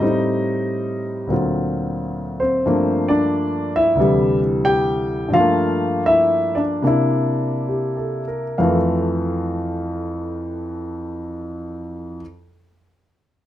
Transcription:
0, 0, Header, 1, 2, 480
1, 0, Start_track
1, 0, Key_signature, -1, "major"
1, 0, Tempo, 660793
1, 5, Time_signature, 4, 2, 24, 8
1, 3366, Tempo, 688863
1, 3846, Tempo, 754717
1, 4806, Tempo, 832178
1, 5286, Tempo, 904977
1, 5766, Tempo, 916031
1, 7206, Tempo, 938967
1, 8301, End_track
2, 0, Start_track
2, 0, Title_t, "Grand piano"
2, 0, Program_c, 0, 0
2, 0, Note_on_c, 0, 45, 52
2, 0, Note_on_c, 0, 75, 74
2, 5, Note_on_c, 0, 55, 52
2, 18, Note_on_c, 0, 60, 52
2, 27, Note_on_c, 0, 63, 62
2, 908, Note_off_c, 0, 75, 0
2, 922, Note_on_c, 0, 38, 47
2, 936, Note_on_c, 0, 46, 44
2, 942, Note_off_c, 0, 45, 0
2, 943, Note_off_c, 0, 60, 0
2, 946, Note_on_c, 0, 54, 44
2, 949, Note_off_c, 0, 55, 0
2, 954, Note_on_c, 0, 60, 46
2, 960, Note_off_c, 0, 63, 0
2, 963, Note_on_c, 0, 65, 46
2, 1742, Note_on_c, 0, 72, 63
2, 1750, Note_off_c, 0, 60, 0
2, 1761, Note_on_c, 0, 60, 51
2, 1909, Note_off_c, 0, 38, 0
2, 1916, Note_off_c, 0, 46, 0
2, 1921, Note_off_c, 0, 54, 0
2, 1929, Note_off_c, 0, 65, 0
2, 1929, Note_on_c, 0, 43, 58
2, 1936, Note_on_c, 0, 53, 45
2, 1937, Note_on_c, 0, 57, 48
2, 1939, Note_on_c, 0, 58, 57
2, 2212, Note_off_c, 0, 60, 0
2, 2241, Note_on_c, 0, 74, 77
2, 2247, Note_off_c, 0, 72, 0
2, 2253, Note_on_c, 0, 62, 63
2, 2699, Note_off_c, 0, 62, 0
2, 2730, Note_on_c, 0, 76, 81
2, 2736, Note_off_c, 0, 74, 0
2, 2737, Note_on_c, 0, 64, 63
2, 2870, Note_on_c, 0, 38, 58
2, 2883, Note_on_c, 0, 48, 46
2, 2886, Note_off_c, 0, 43, 0
2, 2890, Note_off_c, 0, 53, 0
2, 2890, Note_off_c, 0, 57, 0
2, 2892, Note_off_c, 0, 58, 0
2, 2894, Note_on_c, 0, 52, 51
2, 2905, Note_on_c, 0, 55, 63
2, 3181, Note_off_c, 0, 76, 0
2, 3184, Note_off_c, 0, 64, 0
2, 3376, Note_on_c, 0, 79, 88
2, 3380, Note_on_c, 0, 67, 65
2, 3819, Note_on_c, 0, 43, 53
2, 3824, Note_off_c, 0, 79, 0
2, 3826, Note_off_c, 0, 67, 0
2, 3842, Note_off_c, 0, 38, 0
2, 3847, Note_on_c, 0, 53, 50
2, 3848, Note_off_c, 0, 48, 0
2, 3852, Note_off_c, 0, 52, 0
2, 3854, Note_on_c, 0, 77, 84
2, 3857, Note_off_c, 0, 55, 0
2, 3858, Note_on_c, 0, 65, 73
2, 3866, Note_on_c, 0, 57, 54
2, 3895, Note_on_c, 0, 58, 60
2, 4291, Note_off_c, 0, 77, 0
2, 4293, Note_off_c, 0, 65, 0
2, 4316, Note_on_c, 0, 76, 88
2, 4328, Note_on_c, 0, 64, 62
2, 4625, Note_off_c, 0, 64, 0
2, 4626, Note_on_c, 0, 74, 60
2, 4641, Note_on_c, 0, 62, 52
2, 4651, Note_off_c, 0, 76, 0
2, 4794, Note_off_c, 0, 43, 0
2, 4798, Note_off_c, 0, 58, 0
2, 4800, Note_on_c, 0, 48, 57
2, 4804, Note_off_c, 0, 62, 0
2, 4807, Note_off_c, 0, 53, 0
2, 4807, Note_on_c, 0, 58, 49
2, 4813, Note_on_c, 0, 62, 53
2, 4816, Note_off_c, 0, 57, 0
2, 4829, Note_on_c, 0, 64, 67
2, 5296, Note_on_c, 0, 67, 36
2, 5447, Note_on_c, 0, 69, 41
2, 5576, Note_off_c, 0, 74, 0
2, 5586, Note_off_c, 0, 67, 0
2, 5610, Note_on_c, 0, 70, 44
2, 5695, Note_off_c, 0, 69, 0
2, 5764, Note_off_c, 0, 48, 0
2, 5767, Note_off_c, 0, 58, 0
2, 5769, Note_off_c, 0, 62, 0
2, 5772, Note_on_c, 0, 77, 61
2, 5774, Note_on_c, 0, 41, 52
2, 5777, Note_off_c, 0, 64, 0
2, 5778, Note_on_c, 0, 53, 53
2, 5784, Note_on_c, 0, 57, 48
2, 5789, Note_on_c, 0, 52, 61
2, 5861, Note_off_c, 0, 70, 0
2, 7629, Note_off_c, 0, 77, 0
2, 7651, Note_off_c, 0, 41, 0
2, 7655, Note_off_c, 0, 53, 0
2, 7661, Note_off_c, 0, 57, 0
2, 7666, Note_off_c, 0, 52, 0
2, 8301, End_track
0, 0, End_of_file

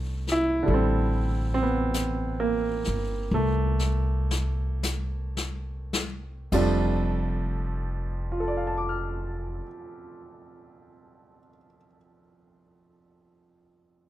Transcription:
0, 0, Header, 1, 4, 480
1, 0, Start_track
1, 0, Key_signature, -1, "major"
1, 0, Tempo, 1239669
1, 261, Time_signature, 4, 2, 24, 8
1, 749, Tempo, 1369863
1, 1229, Tempo, 1522843
1, 1709, Tempo, 1694915
1, 2189, Tempo, 1764706
1, 4248, End_track
2, 0, Start_track
2, 0, Title_t, "Grand piano"
2, 0, Program_c, 0, 0
2, 0, Control_c, 0, 64, 127
2, 0, Note_on_c, 0, 50, 40
2, 0, Note_on_c, 0, 55, 36
2, 0, Note_on_c, 0, 57, 74
2, 123, Note_on_c, 0, 64, 77
2, 143, Note_off_c, 0, 57, 0
2, 237, Note_off_c, 0, 50, 0
2, 243, Note_on_c, 0, 50, 52
2, 250, Note_off_c, 0, 55, 0
2, 256, Note_on_c, 0, 55, 42
2, 271, Note_on_c, 0, 69, 46
2, 286, Note_on_c, 0, 60, 55
2, 582, Note_off_c, 0, 64, 0
2, 591, Note_off_c, 0, 60, 0
2, 597, Note_on_c, 0, 60, 63
2, 630, Note_on_c, 0, 59, 50
2, 638, Note_off_c, 0, 59, 0
2, 912, Note_on_c, 0, 58, 63
2, 920, Note_off_c, 0, 60, 0
2, 1241, Note_on_c, 0, 57, 59
2, 1242, Note_off_c, 0, 58, 0
2, 2027, Note_off_c, 0, 57, 0
2, 2182, Note_off_c, 0, 50, 0
2, 2187, Note_off_c, 0, 55, 0
2, 2189, Note_on_c, 0, 41, 49
2, 2191, Note_on_c, 0, 48, 46
2, 2192, Control_c, 0, 64, 0
2, 2193, Note_off_c, 0, 69, 0
2, 2193, Note_on_c, 0, 53, 62
2, 2194, Note_on_c, 0, 55, 51
2, 2195, Note_on_c, 0, 57, 47
2, 2196, Note_on_c, 0, 62, 58
2, 2239, Control_c, 0, 64, 127
2, 2678, Note_on_c, 0, 65, 36
2, 2700, Note_on_c, 0, 69, 36
2, 2721, Note_on_c, 0, 74, 31
2, 2746, Note_on_c, 0, 77, 32
2, 2774, Note_on_c, 0, 81, 30
2, 2802, Note_on_c, 0, 86, 29
2, 2833, Note_on_c, 0, 89, 28
2, 3029, Note_off_c, 0, 53, 0
2, 3035, Note_off_c, 0, 41, 0
2, 3038, Note_off_c, 0, 48, 0
2, 3040, Note_off_c, 0, 55, 0
2, 3041, Note_off_c, 0, 57, 0
2, 3043, Note_off_c, 0, 62, 0
2, 3513, Note_off_c, 0, 65, 0
2, 3536, Note_off_c, 0, 69, 0
2, 3557, Note_off_c, 0, 74, 0
2, 3582, Note_off_c, 0, 77, 0
2, 3609, Note_off_c, 0, 81, 0
2, 3638, Note_off_c, 0, 86, 0
2, 3669, Note_off_c, 0, 89, 0
2, 4248, End_track
3, 0, Start_track
3, 0, Title_t, "Upright bass"
3, 0, Program_c, 1, 32
3, 0, Note_on_c, 1, 36, 68
3, 246, Note_off_c, 1, 36, 0
3, 262, Note_on_c, 1, 33, 63
3, 1061, Note_off_c, 1, 33, 0
3, 1078, Note_on_c, 1, 31, 52
3, 1221, Note_off_c, 1, 31, 0
3, 1232, Note_on_c, 1, 36, 64
3, 2179, Note_off_c, 1, 36, 0
3, 2188, Note_on_c, 1, 29, 67
3, 3024, Note_off_c, 1, 29, 0
3, 4248, End_track
4, 0, Start_track
4, 0, Title_t, "Drums"
4, 105, Note_on_c, 9, 38, 25
4, 144, Note_off_c, 9, 38, 0
4, 263, Note_on_c, 9, 25, 38
4, 751, Note_off_c, 9, 25, 0
4, 751, Note_on_c, 9, 25, 32
4, 751, Note_on_c, 9, 38, 41
4, 751, Note_on_c, 9, 44, 49
4, 786, Note_off_c, 9, 38, 0
4, 786, Note_off_c, 9, 44, 0
4, 1067, Note_on_c, 9, 38, 24
4, 1102, Note_off_c, 9, 38, 0
4, 1383, Note_on_c, 9, 38, 36
4, 1415, Note_off_c, 9, 38, 0
4, 1454, Note_off_c, 9, 25, 0
4, 1546, Note_on_c, 9, 38, 53
4, 1577, Note_off_c, 9, 38, 0
4, 1710, Note_on_c, 9, 38, 49
4, 1710, Note_on_c, 9, 44, 44
4, 1739, Note_off_c, 9, 38, 0
4, 1739, Note_off_c, 9, 44, 0
4, 1862, Note_on_c, 9, 38, 50
4, 1891, Note_off_c, 9, 38, 0
4, 2022, Note_on_c, 9, 38, 67
4, 2050, Note_off_c, 9, 38, 0
4, 2189, Note_on_c, 9, 36, 46
4, 2189, Note_on_c, 9, 49, 52
4, 2216, Note_off_c, 9, 36, 0
4, 2216, Note_off_c, 9, 49, 0
4, 4248, End_track
0, 0, End_of_file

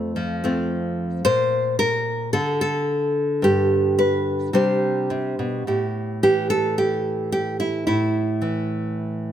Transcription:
0, 0, Header, 1, 2, 480
1, 0, Start_track
1, 0, Tempo, 546448
1, 1097, Time_signature, 4, 2, 24, 8
1, 3494, Tempo, 560224
1, 5894, Tempo, 549451
1, 8114, End_track
2, 0, Start_track
2, 0, Title_t, "Nylon-string guitar"
2, 0, Program_c, 0, 24
2, 0, Note_on_c, 0, 41, 66
2, 0, Note_on_c, 0, 53, 69
2, 0, Note_on_c, 0, 57, 49
2, 0, Note_on_c, 0, 65, 46
2, 0, Note_on_c, 0, 69, 76
2, 140, Note_off_c, 0, 53, 0
2, 140, Note_on_c, 0, 53, 62
2, 373, Note_off_c, 0, 57, 0
2, 374, Note_off_c, 0, 69, 0
2, 379, Note_off_c, 0, 65, 0
2, 384, Note_on_c, 0, 57, 49
2, 391, Note_on_c, 0, 60, 53
2, 394, Note_on_c, 0, 65, 55
2, 1070, Note_off_c, 0, 41, 0
2, 1071, Note_off_c, 0, 53, 0
2, 1073, Note_off_c, 0, 57, 0
2, 1077, Note_off_c, 0, 60, 0
2, 1077, Note_off_c, 0, 65, 0
2, 1095, Note_on_c, 0, 72, 106
2, 1097, Note_on_c, 0, 46, 67
2, 1568, Note_off_c, 0, 72, 0
2, 1571, Note_on_c, 0, 70, 100
2, 2043, Note_off_c, 0, 70, 0
2, 2046, Note_on_c, 0, 69, 87
2, 2052, Note_off_c, 0, 46, 0
2, 2053, Note_on_c, 0, 50, 64
2, 2284, Note_off_c, 0, 69, 0
2, 2294, Note_on_c, 0, 69, 90
2, 3006, Note_on_c, 0, 43, 63
2, 3013, Note_off_c, 0, 69, 0
2, 3021, Note_on_c, 0, 67, 80
2, 3497, Note_off_c, 0, 67, 0
2, 3501, Note_on_c, 0, 71, 86
2, 3938, Note_off_c, 0, 43, 0
2, 3968, Note_off_c, 0, 50, 0
2, 3969, Note_on_c, 0, 48, 71
2, 3972, Note_on_c, 0, 55, 46
2, 3973, Note_off_c, 0, 71, 0
2, 3976, Note_on_c, 0, 62, 44
2, 3982, Note_on_c, 0, 72, 78
2, 3986, Note_on_c, 0, 67, 45
2, 4446, Note_off_c, 0, 48, 0
2, 4457, Note_on_c, 0, 48, 57
2, 4699, Note_off_c, 0, 48, 0
2, 4704, Note_on_c, 0, 47, 48
2, 4910, Note_off_c, 0, 55, 0
2, 4914, Note_off_c, 0, 62, 0
2, 4919, Note_off_c, 0, 67, 0
2, 4942, Note_off_c, 0, 47, 0
2, 4945, Note_off_c, 0, 72, 0
2, 4945, Note_on_c, 0, 45, 55
2, 4952, Note_on_c, 0, 67, 41
2, 5422, Note_off_c, 0, 67, 0
2, 5423, Note_on_c, 0, 52, 58
2, 5425, Note_on_c, 0, 67, 86
2, 5651, Note_off_c, 0, 67, 0
2, 5655, Note_on_c, 0, 69, 90
2, 5891, Note_off_c, 0, 69, 0
2, 5895, Note_on_c, 0, 67, 77
2, 6360, Note_off_c, 0, 67, 0
2, 6370, Note_on_c, 0, 67, 83
2, 6605, Note_off_c, 0, 67, 0
2, 6609, Note_on_c, 0, 64, 76
2, 6830, Note_off_c, 0, 52, 0
2, 6835, Note_off_c, 0, 64, 0
2, 6845, Note_off_c, 0, 45, 0
2, 6845, Note_on_c, 0, 64, 68
2, 6856, Note_on_c, 0, 45, 63
2, 7324, Note_on_c, 0, 52, 61
2, 7809, Note_off_c, 0, 64, 0
2, 8114, Note_off_c, 0, 45, 0
2, 8114, Note_off_c, 0, 52, 0
2, 8114, End_track
0, 0, End_of_file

